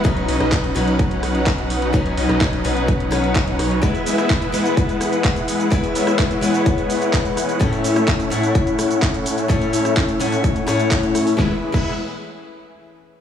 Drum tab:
CC |----------------|----------------|----------------|----------------|
HH |xxoxxxoxxxoxxxox|xxoxxxoxxxoxxxox|xxoxxxoxxxoxxxox|xxoxxxoxxxoxxxox|
SH |----------------|----------------|xxxxxxxxxxxxxxxx|xxxxxxxxxxxxxxxx|
CP |----x-------x---|----x-------x---|----x-------x---|----x-------x---|
SD |---r------r-----|---r------r---r-|---r------r-----|---r----------r-|
BD |o---o---o---o---|o---o---o---o---|o---o---o---o---|o---o---o---o---|

CC |----------------|----------------|---x------------|
HH |xxoxxxoxxxoxxxox|xxoxxxoxxxoxxxoo|----------------|
SH |xxxxxxxxxxxxxxxx|xxxxxxxxxxxxxxxx|----------------|
CP |----x-------x---|----x-------x---|----------------|
SD |---r------r-----|---r------r---r-|o---------------|
BD |o---o---o---o---|o---o---o---o---|o--o------------|